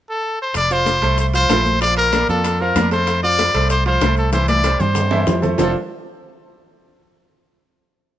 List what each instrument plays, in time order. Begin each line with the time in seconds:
0.10 trumpet A4
0.42 trumpet C5
0.54 fingered electric bass F1, trumpet D5, high bongo, high conga, high timbale, maracas
0.70 grand piano F3 F4 F5, trumpet C5, high conga, maracas
0.86 high bongo, high conga, high timbale, maracas
1.02 fingered electric bass C2, grand piano A3 A4 C5, high timbale, maracas
1.18 trumpet C5, high bongo, high conga, maracas
1.34 grand piano F3 F4 F5, trumpet C5, high conga, high timbale, maracas
1.49 fingered electric bass A#1, grand piano A3 A4 C5, high bongo, low bongo, high conga, high timbale, low timbale, maracas
1.66 high conga, maracas
1.81 grand piano F3 F4 F5, trumpet D5, high bongo, high timbale, maracas
1.97 trumpet A#4, high bongo, high conga, high timbale
2.12 grand piano A#3 A#4 D5, high bongo, high conga, high timbale, maracas
2.28 fingered electric bass F2, grand piano A#3 F4 D5, trumpet A4, high bongo, high conga, maracas
2.44 high bongo, high conga, high timbale, maracas
2.60 grand piano F3 F4 F5, trumpet A#4, high bongo, high conga
2.76 fingered electric bass F2, grand piano A#3 A#4 D5, high bongo, low bongo, high conga, high timbale, maracas
2.91 grand piano A3 A4 C5, trumpet C5, high timbale, maracas
3.07 high bongo, high conga, high timbale, maracas
3.23 grand piano F3 F4 F5, trumpet D5, high conga
3.39 high bongo, high conga, high timbale, maracas
3.54 fingered electric bass C2, grand piano A3 A4 C5, high timbale, maracas
3.70 trumpet C5, high bongo, high conga, maracas
3.86 grand piano F3 F4 F5, trumpet C5, high conga, high timbale
4.01 fingered electric bass C2, grand piano A3 A4 C5, high bongo, low bongo, high conga, high timbale, maracas
4.17 trumpet A4, maracas
4.32 grand piano E3 E4 E5, trumpet C5, high bongo, high conga, high timbale, maracas
4.48 trumpet D5, high bongo, high conga, high timbale, maracas
4.64 grand piano G3 G4 C5, high bongo, high timbale, maracas
4.79 fingered electric bass G2, grand piano G3 G4 C5, trumpet C5, high bongo, low conga, maracas
4.95 high bongo, low conga, high timbale, maracas
5.11 grand piano E3 E4 E5, high bongo, high timbale
5.27 fingered electric bass F2, grand piano G3 G4 C5, high bongo, low bongo, low conga, low timbale, maracas
5.42 grand piano A3 A4 C5, low conga, low timbale, maracas
5.58 fingered electric bass F1, grand piano F3 C4 D4 F4 A4 C5, trumpet A4, low bongo, low conga, low timbale, maracas